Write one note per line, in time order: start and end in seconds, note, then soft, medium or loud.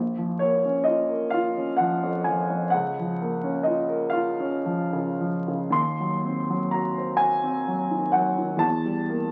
0.00 2.69 A#1 soft
0.18 0.56 F3 soft
0.39 0.79 A#3 soft
0.39 0.87 C#5 medium
0.65 1.02 C#4 soft
0.84 1.24 F4 soft
0.84 1.31 D#5 medium
1.09 1.47 A#4 soft
1.30 1.70 F4 soft
1.30 1.78 F5 medium
1.57 1.94 C#4 soft
1.77 2.17 F3 soft
1.77 2.25 F#5 medium
2.03 2.41 F2 soft
2.24 2.65 F3 soft
2.24 2.73 G#5 medium
2.50 2.73 F2 soft
2.70 5.69 C#2 medium
2.70 3.64 F#5 medium
2.99 3.35 F3 soft
3.21 3.57 A#3 soft
3.44 3.80 C#4 soft
3.63 4.04 F4 soft
3.63 4.12 D#5 medium
3.89 4.28 A#4 soft
4.10 4.54 F4 soft
4.10 5.71 F5 medium
4.40 4.81 C#4 soft
4.65 5.08 F3 soft
4.93 5.36 C#3 soft
5.21 5.63 F3 soft
5.48 5.74 C#3 soft
5.70 8.57 D#2 medium
5.70 6.72 C6 medium
6.00 6.39 F#3 soft
6.25 6.64 C4 soft
6.50 6.88 F#3 soft
6.71 7.11 F#4 soft
6.71 7.20 A#5 medium
6.98 7.35 C5 soft
7.17 7.58 F#4 soft
7.17 8.13 G#5 medium
7.44 7.81 C4 soft
7.68 8.05 F#3 soft
7.91 8.29 D#3 soft
8.12 8.53 F#3 soft
8.12 8.61 F#5 medium
8.38 8.62 D#3 soft
8.57 9.31 E2 medium
8.57 9.31 A5 medium
8.85 9.25 G3 soft
9.09 9.31 A#3 soft